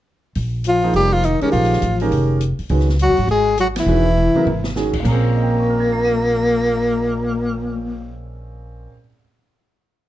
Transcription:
0.35 upright bass A#1, open hi-hat
0.64 trombone F3, closed hi-hat
0.68 tenor saxophone F4
0.82 grand piano F3 A#3 D#4 G#4 C5, open hi-hat
0.93 upright bass F1, trombone G3, tenor saxophone G4, open hi-hat
1.13 trombone F3, tenor saxophone F4
1.23 trombone D#3, tenor saxophone D#4, closed hi-hat
1.41 trombone C#3, grand piano D#3 G#3 C#4 G4 A#4, tenor saxophone C#4, muted upright bass stroke, open hi-hat
1.52 upright bass A#1, trombone F3, tenor saxophone F4, open hi-hat
1.64 snare
1.73 snare
1.82 upright bass A1, closed hi-hat
2.00 grand piano D#3 G#3 C#4 G4 A#4, open hi-hat
2.11 upright bass F1, open hi-hat
2.41 closed hi-hat
2.59 muted upright bass stroke, open hi-hat
2.69 upright bass C#2, grand piano D#3 G#3 C#4 F#4 B4, open hi-hat
2.80 snare
2.89 snare
2.99 trombone F#3, tenor saxophone F#4, closed hi-hat
3.09 upright bass E2
3.17 upright bass G#2, open hi-hat
3.27 upright bass G#1, trombone G#3, tenor saxophone G#4, open hi-hat
3.58 trombone F#3, tenor saxophone F#4, closed hi-hat
3.76 trombone E3, tenor saxophone E4, snare, ride
3.86 upright bass E1, grand piano D#3 G#3 C#4 F#4 B4
4.17 mid tom
4.34 grand piano C#3 F#3 B3 E4 A#4, muted upright bass stroke, mid tom
4.46 upright bass G#1, mid tom
4.64 snare
4.76 grand piano D#3 G#3 C#4 F#4 G#4, snare
4.93 kick, crash
5.00 grand piano A#2 A#3
5.04 upright bass A#1, trombone A#2, tenor saxophone A#3, grand piano C#4, kick, crash
5.09 grand piano C4 G#4
5.23 cymbal swell
5.35 grand piano D#5
5.42 grand piano G5
5.51 grand piano A#5
5.59 grand piano C#6
5.70 grand piano F6
5.80 grand piano G#6
5.92 grand piano C7
6.05 grand piano D#7

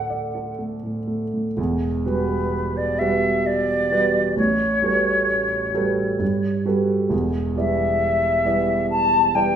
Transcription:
Already playing: grand piano D2 A2 A3 A4 D5, flute F#5
0.10 grand piano D5
0.35 grand piano A4
0.59 grand piano A3
0.83 grand piano A2
1.08 grand piano A3
1.34 grand piano A2
1.57 grand piano E1 E2
2.06 grand piano G3 F#4 B4, flute B4
2.77 flute D5
2.99 grand piano G3 F#4 B4, flute E5
3.46 flute D5
3.91 grand piano G3 F#4 B4
4.36 grand piano A1 A2, flute C#5
4.82 grand piano G3 F#4 A4 B4
5.74 grand piano G3 F#4 A4 B4
6.19 grand piano G2
6.65 grand piano G3 F#4 A4 B4
7.10 grand piano E1 E2
7.56 grand piano G3 E4 B4 D5, flute E5
8.45 grand piano G3 E4 B4 D5
8.90 flute A5
9.35 grand piano G3 E4 B4 D5, flute G5

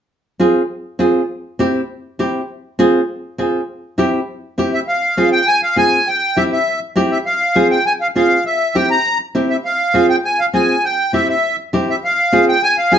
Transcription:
0.39 nylon-string guitar C4 F4 G#4
0.99 nylon-string guitar C4 F4 G#4
1.59 nylon-string guitar C4 E4 G4
2.19 nylon-string guitar C4 E4 G4
2.79 nylon-string guitar C4 F4 G#4
3.38 nylon-string guitar C4 F4 G#4
3.98 nylon-string guitar C4 E4 G4
4.58 nylon-string guitar C4 E4 G4
4.73 accordion E5
4.88 accordion F5
5.17 nylon-string guitar C4 F4 G#4
5.32 accordion G5
5.47 accordion G#5
5.63 accordion F5
5.76 nylon-string guitar C4 F4 G#4, accordion G#5
6.07 accordion G5
6.36 nylon-string guitar C4 E4 G4, accordion E5
6.52 accordion E5
6.96 nylon-string guitar C4 E4 G4
7.11 accordion E5
7.26 accordion F5
7.55 nylon-string guitar C4 F4 G#4
7.71 accordion G5
7.86 accordion G#5
8.01 accordion F5
8.16 nylon-string guitar C4 F4 G#4, accordion F5
8.46 accordion E5
8.75 nylon-string guitar C4 E4 G4, accordion G5
8.90 accordion A#5
9.35 nylon-string guitar C4 E4 G4
9.50 accordion E5
9.65 accordion F5
9.94 nylon-string guitar C4 F4 G#4
10.09 accordion G5
10.25 accordion G#5
10.39 accordion F5
10.53 nylon-string guitar C4 F4 G#4, accordion G#5
10.85 accordion G5
11.13 nylon-string guitar C4 E4 G4, accordion E5
11.29 accordion E5
11.73 nylon-string guitar C4 E4 G4
11.90 accordion E5
12.04 accordion F5
12.32 nylon-string guitar C4 F4 G#4
12.49 accordion G5
12.63 accordion G#5
12.78 accordion F5
12.92 nylon-string guitar C4 F4 G#4, accordion G#5

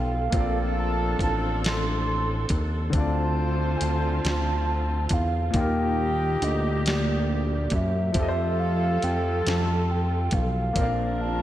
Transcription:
Already playing: analog synth bass B1, grand piano F3 C4 G4 A4 C5, string section F3 F4 A4, soft synth lead F5
0.30 analog synth bass A#1, grand piano F3 A#3 C4, horn section A3 F4 A4, string section C4 D4 A4, kick, closed hi-hat
0.36 grand piano F4 A4 D5
0.80 soft synth lead A5
1.19 analog synth bass A1, soft synth lead A5, kick, closed hi-hat
1.64 soft synth lead C6, snare, closed hi-hat
2.49 analog synth bass D#2, kick, closed hi-hat
2.90 analog synth bass D2, grand piano D3 C4, string section D3 C4, horn section F4 A4 C5, kick, closed hi-hat
2.94 grand piano D4 F4, string section F4, soft synth lead A5
3.00 grand piano D5
3.76 soft synth lead G#5
3.81 analog synth bass D2, soft synth lead A5, closed hi-hat
4.25 analog synth bass D2, snare, closed hi-hat
5.09 analog synth bass E2, kick, closed hi-hat
5.13 soft synth lead F5
5.50 analog synth bass D#2, grand piano A#2 A#3, horn section G3 D#4, kick, closed hi-hat
5.54 string section A#2 A#3 G4, grand piano F4 G4, horn section G4, soft synth lead G5
5.60 grand piano A#4
6.42 analog synth bass D2, soft synth lead D#5, closed hi-hat
6.86 soft synth lead D5, snare, closed hi-hat
7.70 analog synth bass F#2, soft synth lead E5, kick, closed hi-hat
8.12 analog synth bass F2, grand piano F3 C4, string section F3 F4 A4, horn section A3 F4 A4, kick, closed hi-hat
8.17 grand piano G4 A4
8.22 grand piano D#5
8.28 grand piano C5
8.60 soft synth lead F5
9.03 analog synth bass F2, soft synth lead G5, closed hi-hat
9.47 analog synth bass F2, soft synth lead A5, snare, closed hi-hat
9.91 soft synth lead G5
10.31 analog synth bass B1, soft synth lead F5, kick, closed hi-hat
10.73 analog synth bass A#1, grand piano F3 A#3 C4, string section A#3 C4 D4, horn section A#3 F4 A#4, kick, closed hi-hat
10.79 grand piano A#4 D5
10.83 grand piano F5
11.21 soft synth lead A5

